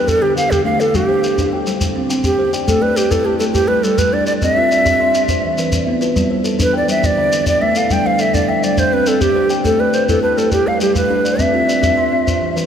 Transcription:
Already playing: C5 G5
0.08 G4 A4, shekere
0.22 D3 G4
0.36 D3 A4 F5, shekere
0.51 G4, shekere
0.65 A3 D4 F5
0.79 E4 A4, shekere
0.94 G3 G4, shekere
1.08 G3 C5
1.24 A4, shekere
1.38 D4 A4, shekere
1.52 G3 G5
1.66 G3 C5, shekere
1.81 G4, shekere
1.96 C4
2.10 C4 G5, shekere
2.24 G4, shekere
2.39 G4 C5
2.53 D5 G5, shekere
2.67 A3 A4, shekere
2.81 A3 B4 D5
2.97 G4 B4, shekere
3.11 E4 A4 B4, shekere
3.25 A3 G4 A5
3.39 A3 A4 D5, shekere
3.53 G4 A4, shekere
3.68 G3 B4
3.83 G3 A4 D5, shekere
3.98 B4, shekere
4.13 D4 G4 D5
4.27 A4 D5, shekere
4.42 C4 D#5, shekere
4.56 C4 F4 E5
4.71 D5, shekere
4.85 G4 D5, shekere
5.00 C4 C6
5.14 C4 F4, shekere
5.28 C5, shekere
5.45 E3
5.58 E3 B4, shekere
5.72 shekere
5.87 B3 E4
6.01 F4 B4, shekere
6.16 G3, shekere
6.30 G3 C5
6.44 A4, shekere
6.59 D4 A4 B4, shekere
6.73 G3 D5 G5
6.88 G3 C5 E5, shekere
7.02 G4 D5, shekere
7.18 D3
7.32 D3, shekere
7.46 D5, shekere
7.61 A3 D4 E5
7.75 E4 A4 F5, shekere
7.90 G3 G5, shekere
8.05 G3 C5 F5
8.19 A4 E5, shekere
8.34 D4 A4 D5, shekere
8.48 G3 E5 G5
8.63 G3 C5 D5, shekere
8.78 G4 C5, shekere
8.93 C4 B4
9.06 C4 A4 G5, shekere
9.21 G4, shekere
9.36 G4 C5
9.50 D5 G5, shekere
9.64 A3 A4, shekere
9.79 A3 B4 D5
9.94 B4 C5, shekere
10.08 E4 A4 B4, shekere
10.23 A3 B4 A5
10.37 A3 A4 D5, shekere
10.52 G4 A4, shekere
10.67 G3 F5
10.81 G3 G4 D5, shekere
10.95 B4, shekere
11.10 D4 G4
11.25 A4 D5, shekere
11.39 C4 E5, shekere
11.54 C4 F4
11.68 D5, shekere
11.82 G4 D5, shekere
11.97 C4 C6
12.12 C4 F4
12.27 C5, shekere
12.41 E3
12.56 E3 B4, shekere

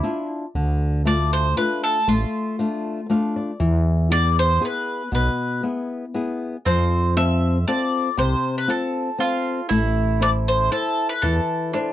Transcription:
Already playing: E4
0.03 D4 E4 F4
0.55 D2 D3
1.05 A3 D4 F4 D5
1.33 C5
1.57 A3 D4 F4 B4
1.84 A4
2.08 A1 A3 F4
2.59 A3 D4 F4
3.10 A3 D4 F4 F5
3.36 D5
3.60 E2 E3
4.10 B3 E4 G#4 D5
4.39 C5
4.60 B3 E4 G#4
4.65 B4
5.12 B1 B2 B4
5.63 B3 E4 G#4
6.14 B3 E4 G#4
6.65 F2 F3 C4 C5
7.16 C4 F4 A4 E5
7.68 C4 F4 A4 D5
8.17 C2 C3 C5
8.58 B4
8.68 C4 F4 A4
9.19 C4 F4 A4
9.69 A1 A3 E4
10.21 E4 A4 C5 D5
10.48 C5
10.72 E4 A4 C5
11.09 B4
11.22 E2 E3 A4
11.73 D4 E4 A4 C5

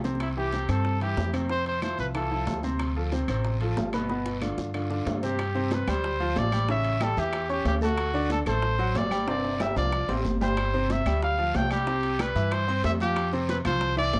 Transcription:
Already playing: C2
0.04 C3 C4 C5, low bongo, high conga, short guiro
0.15 low bongo
0.20 E4, high bongo, high conga, high timbale, long guiro, claves
0.36 E3 E4 G4, high conga
0.52 C3 C4 C5, high bongo, high conga, high timbale, low timbale, short guiro
0.68 G2 C3 C4 A4 C5, high bongo, high conga, high timbale, short guiro, claves
0.85 high bongo, high conga, long guiro
1.01 E3 E4 G4, high bongo, high conga, high timbale
1.17 F2, high bongo, low bongo, high conga, low timbale, short guiro
1.33 C3 C4 C5, high bongo, high conga, high timbale, short guiro, claves
1.50 C3 C4 C5, high bongo, high conga, long guiro
1.66 C5, high bongo, high conga, high timbale
1.82 F3 E4 F4 C5, high bongo, high conga, high timbale, low timbale, short guiro, claves
1.99 C2 B4, high bongo, short guiro
2.15 E3 E4 F4 A4, high bongo, high conga, high timbale, long guiro, claves
2.31 F3 E4 F4, high conga
2.47 D2, high bongo, low bongo, high conga, high timbale, low timbale, short guiro
2.63 C3 C4 C5, high bongo, high conga, short guiro
2.79 high bongo, high conga, high timbale, long guiro, claves
2.96 F3 F4 A4, high conga
3.12 C3 C4 C5, high bongo, high conga, high timbale, low timbale, short guiro
3.28 A1 C3 C4 C5, high bongo, high conga, high timbale, short guiro, claves
3.45 high bongo, high conga, long guiro
3.61 F3 F4 A4, high bongo, high conga, high timbale
3.77 G1, high bongo, low bongo, high conga, low timbale, short guiro
3.93 B2 B3 B4, high bongo, high conga, high timbale, short guiro, claves
4.09 B2 B3 B4, high bongo, high conga, long guiro
4.26 high bongo, high timbale
4.41 D3 D4 F4, high conga, high timbale, low timbale, short guiro, claves
4.58 G2, high bongo, short guiro
4.74 D3 D4 F4, low bongo, high conga, high timbale, long guiro, claves
4.90 D3 D4 F4, low bongo, high conga
5.06 G2, low bongo, high conga, high timbale, low timbale, short guiro
5.23 C3 C4 G4 C5, low bongo, high conga, short guiro
5.39 high bongo, high conga, high timbale, long guiro, claves
5.55 C3 C4 C5, high bongo
5.71 B4, high bongo, high conga, high timbale, low timbale, short guiro
5.87 D2 G3 G4 C5 G5, high bongo, high conga, low conga, high timbale, short guiro, claves
6.03 high bongo, high conga, long guiro
6.20 F3 F4 F5, high bongo, high conga
6.36 A1 D5, high bongo, low bongo, high conga, high timbale, low timbale, short guiro
6.52 G3 G4 G5, high conga, high timbale, short guiro, claves
6.68 C#3 C#4 C#5 E5, high bongo, high conga, long guiro
6.84 high bongo, high conga, high timbale
7.00 G3 G4 A4 G5, high bongo, high conga, high timbale, low timbale, short guiro, claves
7.17 E2 E3 E4 G4 E5, high bongo, short guiro
7.33 high bongo, high conga, high timbale, long guiro, claves
7.49 C#4 G4 C#5 C#6, high bongo, high conga
7.65 D2 G4, high bongo, low bongo, high conga, high timbale, low timbale, short guiro
7.81 A3 F#4 A4 A5, high conga, short guiro
7.97 high bongo, high conga, high timbale, long guiro, claves
8.14 D3 D4 D5, high bongo, high conga
8.30 A4, high bongo, high conga, high timbale, low timbale, short guiro
8.46 A1 A3 A4 C5 A5, high bongo, high conga, low conga, high timbale, short guiro, claves
8.62 high bongo, high conga, long guiro
8.79 F#3 F#4 F#5, high bongo, high conga
8.95 G1 D5, high bongo, low bongo, high conga, high timbale, low timbale, short guiro
9.11 G3 G4 G5, high conga, high timbale, short guiro, claves
9.27 C3 C4 C5 D5, high bongo, high timbale, long guiro
9.44 high bongo, high conga, high timbale
9.60 G3 G4 E5 G5, high bongo, high conga, low timbale, short guiro, claves
9.76 C2 F3 F4 D5 F5, high bongo, high timbale, short guiro
9.92 high bongo, high conga, long guiro, claves
10.08 A1 C4 C5 C6, high bongo, high conga, low timbale
10.25 G1, high bongo, low bongo, high conga, short guiro
10.41 G3 G4 C5 G5, high conga, low timbale, short guiro
10.57 high bongo, high timbale, long guiro, claves
10.74 C3 C4 C5, high bongo, high conga
10.90 E5, high bongo, high conga, high timbale, low timbale, short guiro
11.06 D2 G3 G4 G5, high bongo, high conga, low conga, high timbale, short guiro, claves
11.22 F5, high bongo, high conga, long guiro
11.38 F3 F4 F5, high bongo, high conga
11.54 C2 G5, high bongo, low bongo, high conga, high timbale, low timbale, short guiro
11.70 G3 G4 G5, high conga, high timbale, short guiro, claves
11.87 C3 C4 C5, high bongo, high conga, long guiro
12.03 high bongo, high conga, high timbale
12.19 G3 G4 B4 G5, high bongo, high conga, high timbale, low timbale, short guiro, claves
12.35 G2 E3 E4 E5, high bongo, short guiro
12.51 C5, high bongo, high conga, high timbale, long guiro, claves
12.68 C4 C5 C6, high bongo, high conga
12.84 F2 E5, high bongo, low bongo, high conga, high timbale, low timbale, short guiro
13.00 F3 F4 G4 F5, high conga, short guiro
13.16 high bongo, high conga, high timbale, long guiro, claves
13.33 C3 C4 C5, high bongo, high conga
13.49 B4, high bongo, high conga, high timbale, low timbale, short guiro
13.65 C2 F3 F4 C5 F5, high bongo, high conga, low conga, high timbale, short guiro, claves
13.81 high bongo, high conga, low conga, long guiro
13.97 E3 E4 D5 E5, high bongo, high conga
14.13 G1, high bongo, low bongo, high conga, high timbale, low timbale, short guiro

